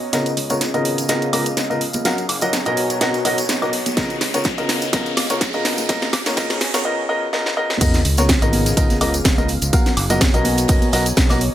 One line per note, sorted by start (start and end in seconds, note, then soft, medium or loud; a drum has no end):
0.00 0.85 B3 medium
0.00 0.13 F#4 medium
0.00 0.90 C#5 medium
0.00 2.34 D#5 medium
0.00 swell medium
0.13 0.30 C#3 medium
0.13 0.30 B3 medium
0.13 2.34 C#4 medium
0.13 0.30 F4 medium
0.13 0.30 A#4 medium
0.13 0.30 D#5 medium
0.13 snare soft
0.13 closed hi-hat medium
0.13 tambourine medium
0.13 riser medium
0.26 closed hi-hat soft
0.26 tambourine soft
0.35 0.69 C#2 medium
0.35 2.34 G#4 medium
0.35 open hi-hat loud
0.50 0.60 C#3 medium
0.50 0.60 B3 medium
0.50 0.60 F4 medium
0.50 0.60 A#4 medium
0.50 0.60 C#5 medium
0.50 closed hi-hat medium
0.50 tambourine medium
0.61 snare soft
0.61 closed hi-hat medium
0.61 tambourine medium
0.74 1.04 G#1 medium
0.74 1.06 C#3 medium
0.74 1.06 B3 medium
0.74 1.06 F4 medium
0.74 1.06 A#4 medium
0.74 1.06 D#5 loud
0.74 closed hi-hat soft
0.74 tambourine soft
0.85 2.34 F5 medium
0.85 open hi-hat loud
0.98 closed hi-hat medium
0.98 tambourine medium
1.08 1.19 G#1 medium
1.08 1.26 C#3 medium
1.08 1.26 B3 medium
1.08 1.26 F4 medium
1.08 1.26 A#4 medium
1.08 1.26 D#5 loud
1.08 snare medium
1.08 closed hi-hat medium
1.08 tambourine medium
1.22 closed hi-hat soft
1.22 tambourine soft
1.33 1.51 C#2 medium
1.33 1.44 C#3 loud
1.33 1.44 B3 medium
1.33 1.44 F4 medium
1.33 1.44 A#4 medium
1.33 1.44 D#5 loud
1.33 open hi-hat loud
1.33 high woodblock medium
1.46 closed hi-hat medium
1.46 tambourine medium
1.57 1.89 C#2 medium
1.57 snare medium
1.57 closed hi-hat medium
1.57 tambourine medium
1.70 1.80 C#3 medium
1.70 1.80 B3 medium
1.70 1.80 F4 medium
1.70 1.80 A#4 medium
1.70 1.80 D#5 medium
1.70 tambourine soft
1.81 open hi-hat loud
1.93 2.02 C#2 medium
1.93 closed hi-hat medium
1.93 tambourine medium
1.93 high conga medium
2.05 2.22 F#3 medium
2.05 2.22 C#4 medium
2.05 2.22 F#4 medium
2.05 3.97 F#4 medium
2.05 2.22 A#4 medium
2.05 2.22 F5 medium
2.05 snare medium
2.05 closed hi-hat medium
2.05 tambourine medium
2.18 4.74 C#5 loud
2.18 closed hi-hat soft
2.18 tambourine soft
2.26 2.61 F#1 medium
2.26 3.25 G#5 medium
2.26 3.25 A#5 medium
2.26 open hi-hat loud
2.26 high woodblock medium
2.41 2.51 F#3 medium
2.41 2.52 C#4 medium
2.41 2.52 F#4 medium
2.41 2.52 A#4 medium
2.41 2.52 D#5 loud
2.41 closed hi-hat medium
2.41 tambourine medium
2.53 snare medium
2.53 closed hi-hat medium
2.53 tambourine medium
2.65 2.96 B1 medium
2.65 2.98 B2 medium
2.65 2.98 B3 medium
2.65 2.98 F#4 medium
2.65 2.98 A#4 medium
2.65 2.98 D#5 loud
2.65 closed hi-hat soft
2.65 tambourine soft
2.77 4.74 B3 medium
2.77 open hi-hat loud
2.90 closed hi-hat medium
2.90 tambourine medium
3.01 3.11 F#1 medium
3.01 3.18 B2 medium
3.01 3.18 B3 medium
3.01 3.18 F#4 medium
3.01 3.18 A#4 medium
3.01 3.18 D#5 loud
3.01 snare medium
3.01 closed hi-hat medium
3.01 tambourine medium
3.14 closed hi-hat soft
3.14 tambourine soft
3.21 3.43 B1 loud
3.21 3.36 B2 medium
3.21 3.36 B3 medium
3.21 3.36 F#4 medium
3.21 3.36 A#4 medium
3.21 6.18 D#5 medium
3.21 3.36 D#5 loud
3.21 open hi-hat loud
3.38 closed hi-hat medium
3.38 tambourine medium
3.49 3.81 B1 loud
3.49 snare medium
3.49 closed hi-hat medium
3.49 tambourine medium
3.62 3.71 B2 medium
3.62 3.71 B3 medium
3.62 3.72 F#4 medium
3.62 3.72 A#4 medium
3.62 3.71 D#5 medium
3.62 tambourine soft
3.62 high woodblock medium
3.73 open hi-hat loud
3.86 3.94 B1 medium
3.86 closed hi-hat medium
3.86 tambourine medium
3.86 high conga medium
3.97 4.14 C#3 medium
3.97 4.14 B3 medium
3.97 6.18 C#4 medium
3.97 4.14 F4 medium
3.97 4.14 A#4 medium
3.97 4.14 D#5 medium
3.97 kick loud
3.97 snare medium
3.97 closed hi-hat medium
3.97 tambourine medium
4.10 closed hi-hat soft
4.10 tambourine soft
4.20 4.53 C#2 medium
4.20 6.18 G#4 medium
4.20 snare medium
4.20 open hi-hat loud
4.34 4.44 C#3 medium
4.34 4.43 B3 medium
4.34 4.44 F4 medium
4.34 4.43 A#4 medium
4.34 4.43 C#5 medium
4.34 closed hi-hat medium
4.34 tambourine medium
4.44 6.18 F5 medium
4.44 kick loud
4.44 snare medium
4.44 closed hi-hat medium
4.44 tambourine medium
4.58 4.88 G#1 medium
4.58 4.90 C#3 medium
4.58 4.90 B3 medium
4.58 4.90 F4 medium
4.58 4.90 A#4 medium
4.58 4.90 D#5 medium
4.58 closed hi-hat soft
4.58 tambourine soft
4.69 snare medium
4.69 open hi-hat loud
4.82 closed hi-hat medium
4.82 tambourine medium
4.93 5.03 G#1 medium
4.93 5.10 C#3 medium
4.93 5.10 B3 medium
4.93 5.10 F4 medium
4.93 5.10 A#4 medium
4.93 5.10 D#5 medium
4.93 kick loud
4.93 snare medium
4.93 closed hi-hat medium
4.93 tambourine medium
5.06 closed hi-hat soft
5.06 tambourine soft
5.17 5.35 C#2 loud
5.17 snare medium
5.17 open hi-hat loud
5.17 high woodblock medium
5.30 5.40 C#3 medium
5.30 5.39 B3 medium
5.30 5.39 F4 medium
5.30 5.39 A#4 medium
5.30 5.39 C#5 loud
5.30 closed hi-hat medium
5.30 tambourine medium
5.41 5.73 C#2 loud
5.41 kick loud
5.41 snare medium
5.41 closed hi-hat medium
5.41 tambourine medium
5.53 5.86 C#3 medium
5.53 5.86 B3 medium
5.53 5.86 F4 medium
5.53 5.86 A#4 medium
5.53 5.86 D#5 medium
5.53 tambourine soft
5.65 snare medium
5.65 open hi-hat loud
5.78 5.86 C#2 medium
5.78 closed hi-hat medium
5.78 tambourine medium
5.78 high conga medium
5.89 6.06 C#3 medium
5.89 6.06 A#3 medium
5.89 6.06 F4 medium
5.89 6.85 F#4 medium
5.89 6.06 A#4 medium
5.89 6.06 D#5 loud
5.89 kick loud
5.89 snare medium
5.89 closed hi-hat medium
5.89 tambourine medium
6.02 6.85 A#5 medium
6.02 snare medium
6.02 closed hi-hat soft
6.02 tambourine soft
6.13 6.45 F#1 loud
6.13 kick medium
6.13 snare medium
6.13 open hi-hat loud
6.13 high woodblock medium
6.18 6.85 C#5 medium
6.22 6.35 C#3 medium
6.22 6.35 A#3 medium
6.22 6.35 F4 medium
6.22 6.35 A#4 medium
6.22 6.35 C#5 loud
6.22 6.85 G#5 medium
6.22 snare medium
6.22 closed hi-hat medium
6.22 tambourine medium
6.37 6.54 C#3 medium
6.37 6.54 A#3 medium
6.37 6.54 F4 medium
6.37 6.54 A#4 medium
6.37 6.54 D#5 loud
6.37 kick loud
6.37 snare medium
6.37 closed hi-hat medium
6.37 tambourine medium
6.50 6.80 B1 medium
6.50 snare medium
6.50 closed hi-hat soft
6.50 tambourine soft
6.61 6.85 B3 medium
6.61 snare loud
6.61 open hi-hat loud
6.74 6.83 C#3 medium
6.74 6.83 B3 medium
6.74 6.83 F4 medium
6.74 6.83 A#4 medium
6.74 6.83 C#5 loud
6.74 snare medium
6.74 closed hi-hat soft
6.74 tambourine medium
6.82 7.02 C#3 medium
6.82 7.02 B3 medium
6.82 7.02 F4 medium
6.82 7.02 A#4 medium
6.82 6.85 D#5 medium
6.82 7.02 D#5 loud
7.09 7.26 C#3 loud
7.09 7.26 B3 medium
7.09 7.26 F4 medium
7.09 7.26 A#4 medium
7.09 7.26 D#5 loud
7.33 7.50 C#3 medium
7.33 7.50 B3 medium
7.33 7.50 F4 medium
7.33 7.50 A#4 medium
7.33 7.50 D#5 medium
7.33 snare medium
7.46 snare medium
7.57 7.74 C#3 loud
7.57 7.74 B3 medium
7.57 7.74 F4 medium
7.57 7.74 A#4 medium
7.57 7.74 D#5 loud
7.70 snare medium
7.81 7.98 C#3 medium
7.81 7.98 B3 medium
7.81 10.02 C#4 medium
7.81 7.98 F4 medium
7.81 7.98 A#4 medium
7.81 7.98 D#5 loud
7.81 kick loud
7.81 closed hi-hat medium
7.81 crash medium
7.81 tambourine medium
7.81 sub drop medium
7.81 high conga medium
7.94 snare soft
7.94 closed hi-hat soft
7.94 tambourine soft
8.05 8.37 C#2 loud
8.05 open hi-hat loud
8.05 tambourine medium
8.17 8.28 C#3 medium
8.17 8.28 B3 medium
8.17 8.28 F4 medium
8.17 10.02 G#4 medium
8.17 8.28 A#4 medium
8.17 8.28 C#5 loud
8.17 10.02 F5 medium
8.17 snare medium
8.17 closed hi-hat medium
8.17 tambourine medium
8.17 high conga medium
8.29 kick loud
8.29 snare loud
8.29 closed hi-hat medium
8.29 tambourine medium
8.42 8.72 G#1 medium
8.42 8.74 C#3 medium
8.42 8.74 B3 medium
8.42 8.74 F4 medium
8.42 8.74 A#4 medium
8.42 8.74 D#5 loud
8.42 closed hi-hat soft
8.42 tambourine soft
8.53 open hi-hat loud
8.53 tambourine medium
8.53 high conga medium
8.65 snare soft
8.65 closed hi-hat medium
8.65 tambourine medium
8.77 8.87 G#1 medium
8.77 8.94 C#3 loud
8.77 8.94 B3 medium
8.77 8.94 F4 medium
8.77 8.94 A#4 medium
8.77 8.94 D#5 loud
8.77 kick loud
8.77 closed hi-hat medium
8.77 tambourine medium
8.90 snare medium
8.90 closed hi-hat soft
8.90 tambourine soft
8.90 high conga medium
9.01 9.19 C#2 medium
9.01 9.12 C#3 loud
9.01 9.12 B3 medium
9.01 9.12 F4 medium
9.01 9.12 A#4 medium
9.01 9.12 D#5 loud
9.01 open hi-hat loud
9.01 tambourine medium
9.01 high woodblock medium
9.14 closed hi-hat medium
9.14 tambourine medium
9.25 9.57 C#2 loud
9.25 kick loud
9.25 snare loud
9.25 closed hi-hat medium
9.25 tambourine medium
9.38 9.48 C#3 medium
9.38 9.48 B3 medium
9.38 9.48 F4 medium
9.38 9.48 A#4 medium
9.38 9.48 D#5 medium
9.38 tambourine soft
9.38 high conga loud
9.48 open hi-hat loud
9.48 tambourine medium
9.62 9.70 C#2 medium
9.62 closed hi-hat medium
9.62 tambourine medium
9.73 9.90 F#3 medium
9.73 9.90 C#4 medium
9.73 9.90 F#4 medium
9.73 11.54 F#4 medium
9.73 9.90 A#4 medium
9.73 9.90 F5 loud
9.73 kick loud
9.73 closed hi-hat medium
9.73 tambourine medium
9.73 high conga loud
9.86 11.54 C#5 medium
9.86 snare soft
9.86 closed hi-hat soft
9.86 tambourine soft
9.94 10.29 F#1 medium
9.94 10.93 G#5 medium
9.94 open hi-hat loud
9.94 tambourine medium
9.94 high woodblock medium
10.06 10.20 F#3 medium
10.06 10.20 C#4 medium
10.06 10.20 F#4 medium
10.06 10.20 A#4 medium
10.06 10.20 D#5 loud
10.06 10.93 A#5 medium
10.06 snare medium
10.06 closed hi-hat medium
10.06 tambourine medium
10.10 tambourine medium
10.10 high conga medium
10.21 kick loud
10.21 snare loud
10.21 closed hi-hat medium
10.21 tambourine medium
10.33 10.64 B1 loud
10.33 10.66 B2 medium
10.33 10.66 B3 medium
10.33 10.66 F#4 medium
10.33 10.66 A#4 medium
10.33 10.66 D#5 loud
10.33 closed hi-hat soft
10.33 tambourine soft
10.45 11.54 B3 medium
10.45 open hi-hat loud
10.45 tambourine medium
10.45 high conga loud
10.58 closed hi-hat soft
10.58 closed hi-hat medium
10.58 tambourine medium
10.68 10.79 F#1 medium
10.68 10.86 B2 medium
10.68 10.86 B3 medium
10.68 10.86 F#4 medium
10.68 10.86 A#4 medium
10.68 10.86 D#5 loud
10.68 kick loud
10.68 closed hi-hat medium
10.68 open hi-hat medium
10.68 tambourine medium
10.82 closed hi-hat soft
10.82 tambourine soft
10.82 high conga medium
10.93 11.11 B1 medium
10.93 11.04 B2 medium
10.93 11.04 B3 medium
10.93 11.04 F#4 medium
10.93 11.04 A#4 medium
10.93 11.04 D#5 loud
10.93 snare loud
10.93 open hi-hat loud
10.93 tambourine medium
11.00 11.54 D#5 loud
11.06 closed hi-hat medium
11.06 tambourine medium
11.17 11.49 B1 loud
11.17 kick loud
11.17 snare loud
11.17 closed hi-hat medium
11.17 tambourine medium
11.17 tambourine soft
11.30 11.40 B2 medium
11.30 11.40 B3 medium
11.30 11.40 F#4 medium
11.30 11.40 A#4 medium
11.30 11.40 D#5 medium
11.30 snare loud
11.30 tambourine soft
11.30 tambourine medium
11.30 tambourine soft
11.30 high conga loud
11.30 high woodblock medium
11.41 open hi-hat loud